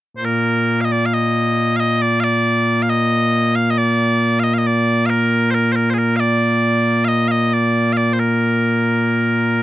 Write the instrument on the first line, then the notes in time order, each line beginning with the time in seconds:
bagpipes
0.17 A#2 A#3 C5
0.25 A#4
0.81 D#5 F5
0.92 D5
1.06 F5
1.14 D#5
1.77 D#5 F5
2.02 D5
2.20 D5 F5
2.83 F5
2.90 D#5
3.56 F5
3.71 D#5
3.78 D5
4.40 F5
4.44 D#5
4.54 F5
4.58 D#5
4.67 D5
5.06 A#4 F5
5.51 A#4 C5
5.72 A#4 C5
5.90 G#4 C5
5.98 A#4
6.16 D5 F5
7.05 D#5 F5
7.28 D#5 F5
7.53 D5
7.93 F5
7.97 D5
8.13 C5
8.20 A#4